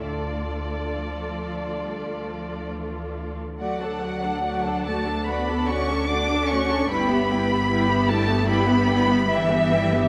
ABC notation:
X:1
M:4/4
L:1/16
Q:1/4=72
K:Dm
V:1 name="Violin section"
d12 z4 | [K:D] f6 a2 b2 c'2 d'2 c'2 | b6 a2 b4 e4 |]
V:2 name="Violin section"
[Ad]12- [Ad]3 z | [K:D] [df] [Aa] [df] [Aa] [df] [Aa] [df] [Aa] [df] [Aa] [df] [Aa] [df] [Aa] [df] [Aa] | [Bg] [Ge] [Bg] [Ge] [Bg] [Ge] [Bg] [Ge] [Bg] [Ge] [Bg] [Ge] [Bg] [Ge] [Bg] [Ge] |]
V:3 name="Viola section"
[A,F]12- [A,F]3 z | [K:D] [A,F] [DA] [A,F] [DA] [A,F] [DA] [A,F] [DA] [A,F] [DA] [A,F] [DA] [A,F] [DA] [A,F] [DA] | [G,E] [B,G] [G,E] [B,G] [G,E] [B,G] [G,E] [B,G] [G,E] [B,G] [G,E] [B,G] [G,E] [B,G] [G,E] [B,G] |]
V:4 name="Cello section"
D,4 F,4 G,2 F,2 E,4 | [K:D] F,6 A,2 B,2 C2 D2 C2 | B,6 A,2 B,4 E,4 |]
V:5 name="Double bass section" clef=bass
D,,12- D,,3 z | [K:D] D,,16 | G,,,16 |]